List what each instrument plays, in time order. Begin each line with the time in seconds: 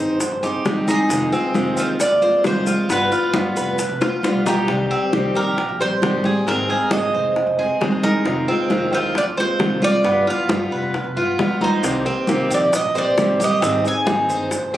Already playing: upright bass G1, steel-string acoustic guitar D#3 C4 D#4 G#4
0.00 cuban tres C5
0.20 muted steel-string acoustic guitar stroke, high bongo, high conga, maracas
0.31 upright bass G1
0.43 steel-string acoustic guitar C4 D#4 G#4, cuban tres G4, high bongo, high conga, maracas
0.65 steel-string acoustic guitar D#3 G3 C4 D#4 G#4, high bongo, low bongo, high conga, maracas
0.75 upright bass F#1
0.88 steel-string acoustic guitar C4 D#4 G#4, cuban tres D#4 G#4, high bongo, high conga, maracas
1.09 upright bass F1, steel-string acoustic guitar C3 D#3 G#3 C4 F4, high bongo, high conga, maracas
1.32 steel-string acoustic guitar G#3 C4 F4, cuban tres C4, high conga, maracas
1.54 upright bass F1, steel-string acoustic guitar C3 D#3 G#3 C4 F4, high bongo, high conga, maracas
1.77 upright bass D#2, cuban tres F4 C5, high conga, maracas
1.99 cuban tres D5, muted steel-string acoustic guitar stroke, high bongo, high conga, maracas
2.11 upright bass D#2
2.21 steel-string acoustic guitar G#3 C4 F4, cuban tres C5, high conga, maracas
2.44 steel-string acoustic guitar C3 D#3 G#3 C4 F4, cuban tres C5, high bongo, low bongo, high conga, maracas
2.56 upright bass F1
2.66 steel-string acoustic guitar G#3 C4 F4, cuban tres F4, high conga, maracas
2.89 upright bass G1, steel-string acoustic guitar G3 B3 F4, cuban tres B3 B4, high bongo, maracas
3.11 steel-string acoustic guitar B3 F4, cuban tres F4, high bongo, high conga, maracas
3.34 upright bass G1, steel-string acoustic guitar G3 B3 F4, high bongo, high conga, maracas
3.55 upright bass F1, cuban tres B4, maracas
3.78 muted steel-string acoustic guitar stroke, high bongo, high conga, maracas
3.89 upright bass F1
4.01 steel-string acoustic guitar B3 F4, cuban tres F4, high bongo, high conga, maracas
4.23 steel-string acoustic guitar G3 B3 F4, high bongo, high conga, maracas
4.33 upright bass B1
4.46 steel-string acoustic guitar B3 F4, cuban tres D#4 G4, low bongo, high conga, maracas
4.68 upright bass C2, steel-string acoustic guitar C3 D#3 G3 C4 G4, high bongo, high conga
4.91 steel-string acoustic guitar G3 C4 G4, cuban tres C4, high conga
5.13 upright bass C2, steel-string acoustic guitar C3 D#3 G3 C4 G4, high bongo, high conga
5.34 upright bass A#1, cuban tres G4 A#4, high conga
5.57 muted steel-string acoustic guitar stroke, high bongo, high conga
5.69 upright bass A#1
5.80 steel-string acoustic guitar G3 C4 G4, cuban tres C5, high conga
6.02 steel-string acoustic guitar C3 D#3 G3 C4 G4, high bongo, low bongo, high conga
6.13 upright bass A1
6.24 steel-string acoustic guitar G3 C4 G4, cuban tres G#4, high conga
6.47 upright bass G#1, steel-string acoustic guitar D#3 G#3 C4 G#4, cuban tres C4 A#4, high bongo, high conga
6.68 steel-string acoustic guitar G#3 C4 G#4, cuban tres G#4, high bongo, high conga
6.91 upright bass G#1, steel-string acoustic guitar D#3 G#3 C4 G#4, cuban tres D#5, high bongo, high conga
7.14 upright bass F1, cuban tres C5
7.36 muted steel-string acoustic guitar stroke, high bongo, high conga
7.47 upright bass F1
7.58 steel-string acoustic guitar G#3 C4 G#4, cuban tres G#4, high bongo, high conga
7.81 steel-string acoustic guitar D#3 G#3 C4 G#4, high bongo, low bongo, high conga
7.91 upright bass G1
8.03 steel-string acoustic guitar G#3 C4 G#4, cuban tres D#4 A#4, high bongo, high conga
8.25 upright bass F1, steel-string acoustic guitar C3 D#3 G#3 C4 F4, high bongo
8.48 steel-string acoustic guitar G#3 C4 F4, cuban tres C4, high conga
8.70 upright bass F1, steel-string acoustic guitar C3 D#3 G#3 C4 F4, high bongo, high conga
8.91 upright bass D#2, cuban tres F4 C5, high conga
9.15 cuban tres D5, muted steel-string acoustic guitar stroke, high bongo, high conga
9.26 upright bass D#2
9.37 steel-string acoustic guitar G#3 C4 F4, cuban tres C5, high conga
9.60 steel-string acoustic guitar C3 D#3 G#3 C4 F4, high bongo, low bongo, high conga
9.70 upright bass F1
9.82 steel-string acoustic guitar G#3 C4 F4, cuban tres F4 D5, high conga
10.04 upright bass G1, steel-string acoustic guitar G3 B3 F4, cuban tres B3, high bongo, high conga
10.27 steel-string acoustic guitar B3 F4, cuban tres F4 F5, high bongo, high conga
10.48 upright bass G1, steel-string acoustic guitar G3 B3 F4, high bongo, high conga
10.71 upright bass F1, cuban tres B4
10.94 muted steel-string acoustic guitar stroke, high bongo, high conga
11.04 upright bass F1
11.16 upright bass G2, steel-string acoustic guitar B3 F4, cuban tres F4, high bongo, high conga
11.38 upright bass F2, steel-string acoustic guitar G3 B3 F4, high bongo, low bongo, high conga
11.60 upright bass D2, steel-string acoustic guitar B3 F4, cuban tres D#4 C5, high bongo, high conga
11.83 upright bass C2, steel-string acoustic guitar C3 D#3 A#3 C4 G4, high bongo, high conga, maracas
12.05 steel-string acoustic guitar A#3 C4 G4, cuban tres C4, high conga, maracas
12.27 upright bass C2, steel-string acoustic guitar C3 D#3 A#3 C4 G4, high bongo, high conga, maracas
12.50 upright bass A#1, cuban tres G4 D5, high conga, maracas
12.73 cuban tres D#5, muted steel-string acoustic guitar stroke, high bongo, high conga, maracas
12.83 upright bass A#1
12.95 steel-string acoustic guitar A#3 C4 G4, cuban tres C5 D5, high conga, maracas
13.17 steel-string acoustic guitar C3 D#3 A#3 C4 G4, high bongo, low bongo, high conga, maracas
13.29 upright bass A1
13.39 steel-string acoustic guitar A#3 C4 G4, cuban tres G4, high conga, maracas
13.44 cuban tres D#5
13.62 upright bass G#1, steel-string acoustic guitar D#3 G3 C4 D#4 G#4, cuban tres C4, high bongo, maracas
13.84 steel-string acoustic guitar C4 D#4 G#4, cuban tres G#5, high bongo, high conga, maracas
14.06 upright bass G#1, steel-string acoustic guitar D#3 C4 D#4 G#4, high bongo, high conga, maracas
14.28 upright bass G1, cuban tres C5, maracas
14.51 muted steel-string acoustic guitar stroke, high bongo, high conga, maracas
14.62 upright bass G1
14.74 steel-string acoustic guitar G#4, high conga